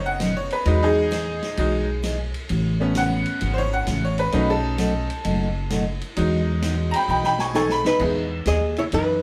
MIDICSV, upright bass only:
0, 0, Header, 1, 2, 480
1, 0, Start_track
1, 0, Key_signature, 4, "major"
1, 0, Tempo, 459067
1, 689, Time_signature, 4, 2, 24, 8
1, 9641, End_track
2, 0, Start_track
2, 0, Title_t, "Upright bass"
2, 0, Program_c, 0, 32
2, 0, Note_on_c, 0, 30, 80
2, 499, Note_off_c, 0, 30, 0
2, 685, Note_on_c, 0, 40, 87
2, 1455, Note_off_c, 0, 40, 0
2, 1651, Note_on_c, 0, 35, 82
2, 2419, Note_off_c, 0, 35, 0
2, 2616, Note_on_c, 0, 33, 96
2, 3382, Note_off_c, 0, 33, 0
2, 3575, Note_on_c, 0, 32, 82
2, 3981, Note_off_c, 0, 32, 0
2, 4047, Note_on_c, 0, 33, 86
2, 4456, Note_off_c, 0, 33, 0
2, 4533, Note_on_c, 0, 35, 96
2, 5299, Note_off_c, 0, 35, 0
2, 5492, Note_on_c, 0, 30, 86
2, 6259, Note_off_c, 0, 30, 0
2, 6456, Note_on_c, 0, 40, 95
2, 7221, Note_off_c, 0, 40, 0
2, 7406, Note_on_c, 0, 35, 92
2, 8176, Note_off_c, 0, 35, 0
2, 8368, Note_on_c, 0, 40, 85
2, 8835, Note_off_c, 0, 40, 0
2, 8846, Note_on_c, 0, 39, 94
2, 9315, Note_off_c, 0, 39, 0
2, 9335, Note_on_c, 0, 42, 81
2, 9641, Note_off_c, 0, 42, 0
2, 9641, End_track
0, 0, End_of_file